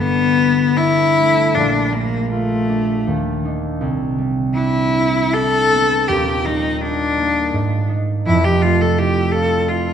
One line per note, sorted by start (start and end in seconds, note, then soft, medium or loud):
0.00 1.58 G1 medium
0.00 1.58 G2 medium
0.00 1.58 D3 medium
0.00 0.79 B3 loud
0.00 1.59 B3 soft
0.00 0.78 D4 medium
0.00 1.58 G4 soft
0.00 0.55 A4 medium
0.00 0.58 D5 medium
0.00 0.61 F#5 medium
0.00 0.16 G5 medium
0.00 0.57 A5 medium
0.37 1.58 F#4 medium
0.78 2.68 D4 medium
0.78 1.56 E4 loud
1.18 3.10 A3 medium
1.54 3.09 A#1 medium
1.54 3.10 A#2 medium
1.54 1.94 D4 loud
1.93 2.32 A#3 loud
1.93 3.84 A#3 medium
2.30 3.43 A3 loud
2.30 3.10 F4 medium
2.69 3.43 D4 medium
3.07 3.83 D#2 medium
3.45 4.54 D4 medium
3.45 3.84 D#4 medium
3.81 6.12 C2 medium
4.18 6.45 G3 medium
4.54 5.33 D4 medium
4.54 5.35 E4 loud
4.94 6.12 E4 medium
5.34 7.55 D4 medium
5.34 6.09 A4 loud
5.73 6.12 B3 medium
6.08 7.55 D#1 medium
6.08 7.55 D#2 medium
6.08 6.47 G4 loud
6.45 8.29 G3 medium
6.45 6.82 D#4 loud
6.81 7.89 D4 loud
6.81 7.88 D#4 medium
7.18 7.56 A#3 medium
7.52 8.28 G#2 medium
7.89 8.28 D#4 medium
8.25 9.93 F1 medium
8.25 9.93 F2 medium
8.25 8.46 E4 loud
8.44 8.64 G4 medium
8.62 9.93 A3 medium
8.62 8.83 F4 loud
8.81 9.00 A4 medium
8.98 9.68 E4 medium
8.98 9.34 G4 medium
9.32 9.93 F4 medium
9.32 9.70 A4 loud
9.69 9.93 E4 medium
9.69 9.93 F4 medium